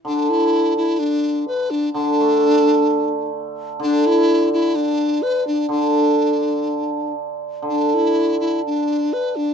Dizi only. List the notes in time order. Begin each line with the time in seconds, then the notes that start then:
0.06 D4
0.30 E4
0.77 E4
0.99 D4
1.48 B4
1.71 D4
1.93 D4
3.82 D4
4.06 E4
4.53 E4
4.76 D4
5.22 B4
5.47 D4
5.70 D4
7.69 D4
7.94 E4
8.40 E4
8.66 D4
9.13 B4
9.36 D4